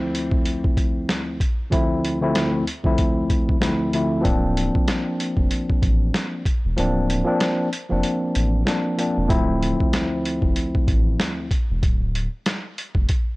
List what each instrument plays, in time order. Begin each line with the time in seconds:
Already playing: tine electric piano D2 F3 A3 C4 E4
0.15 closed hi-hat
0.31 kick
0.45 closed hi-hat
0.64 kick
0.77 kick, closed hi-hat
1.09 snare, closed hi-hat
1.40 kick, closed hi-hat
1.70 tine electric piano D2 F3 A3 C4 E4, kick, closed hi-hat
2.05 closed hi-hat
2.21 tine electric piano D2 F3 A3 C4 E4
2.35 snare, closed hi-hat
2.67 closed hi-hat
2.84 tine electric piano D2 F3 A3 C4 E4, kick
2.98 kick, closed hi-hat
3.30 kick, closed hi-hat
3.49 kick
3.60 tine electric piano D2 F3 A3 C4 E4, snare, closed hi-hat
3.92 tine electric piano D2 F3 A3 C4 E4, closed hi-hat
4.21 sub bass D1, tine electric piano F3 A#3 C4 D4, kick, closed hi-hat
4.57 closed hi-hat
4.75 kick
4.88 snare, closed hi-hat
5.20 closed hi-hat
5.37 sub bass F1, kick
5.51 closed hi-hat
5.70 kick
5.82 sub bass A1, kick, closed hi-hat
6.14 snare, closed hi-hat
6.46 kick, closed hi-hat
6.65 sub bass E1
6.76 sub bass D1, tine electric piano F3 A#3 C4 D4, closed hi-hat
7.10 closed hi-hat
7.24 tine electric piano F3 A#3 C4 D4
7.40 snare, closed hi-hat
7.73 closed hi-hat
7.89 sub bass F1, tine electric piano F3 A#3 C4 D4
8.03 closed hi-hat
8.35 sub bass A1, closed hi-hat
8.65 tine electric piano F3 A#3 C4 D4, snare, closed hi-hat
8.98 tine electric piano F3 A#3 C4 D4, closed hi-hat
9.18 sub bass E1
9.27 sub bass D1, tine electric piano D2 F3 A3 C4 E4, kick, closed hi-hat
9.63 closed hi-hat
9.80 kick
9.93 snare, closed hi-hat
10.25 closed hi-hat
10.42 sub bass F1, kick
10.56 closed hi-hat
10.75 kick
10.88 sub bass A1, kick, closed hi-hat
11.20 snare, closed hi-hat
11.51 kick, closed hi-hat
11.71 sub bass E1
11.83 sub bass D1, kick, closed hi-hat
12.15 closed hi-hat
12.46 snare, closed hi-hat
12.78 closed hi-hat
12.95 sub bass F1, kick
13.09 kick, closed hi-hat